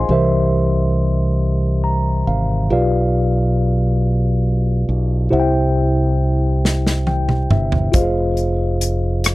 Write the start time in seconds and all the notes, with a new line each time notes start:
Already playing: G#4 C5 D#5 F5 G#5 C6
0.09 C2 C3 E3 G4 A#4 C5 E5
1.84 A#5
2.27 G#1 F5
2.70 B1 B2 F4 G4 B4 D5 F5
4.89 B1
5.30 C2 C3 E4 G4 C5 E5 F#5
5.40 G5
6.65 snare
6.87 snare
7.07 G5, high tom
7.29 mid tom
7.50 G1 E5, mid tom
7.72 floor tom
7.92 F1 F4 G4 C5 D#5 F5, kick, closed hi-hat
8.00 G#4
8.37 closed hi-hat
8.81 closed hi-hat
9.24 cross-stick, closed hi-hat